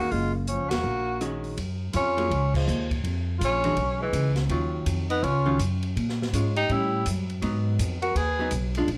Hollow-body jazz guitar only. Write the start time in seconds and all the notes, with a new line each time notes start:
1.21 D#3 G#3 C#4 F#4
2.17 F#3 A#3 F4 G#4
3.65 E3 G#3 D4 F#4
4.50 D#3 F#3 C#4 F4
5.46 D#3 F#3 C#4 F4
6.34 G#3 C#4 F4
6.71 G3 C#4
7.42 F#3 B3 D#4
8.39 F#3 B3 D#4
8.77 G#3 D4 F4